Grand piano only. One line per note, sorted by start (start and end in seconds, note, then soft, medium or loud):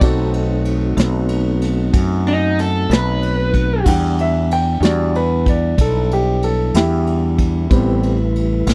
0.00 3.82 C4 medium
0.00 3.82 D#4 medium
0.00 3.83 F#4 medium
0.00 3.83 A4 medium
3.86 4.78 G3 soft
3.86 4.79 D4 soft
3.86 4.79 F#5 soft
3.86 4.19 G5 medium
4.21 4.51 E5 medium
4.53 4.83 G5 medium
4.83 5.11 G3 soft
4.83 5.11 D4 soft
4.83 5.12 F#4 soft
4.83 5.15 D5 medium
5.16 5.47 B4 medium
5.49 5.79 D5 medium
5.81 6.11 A4 medium
6.13 6.43 G4 medium
6.44 6.75 A4 medium
6.75 7.99 E4 medium
6.75 8.00 G4 medium
7.70 8.13 G3 soft
7.70 8.13 B3 soft
7.70 8.14 C4 medium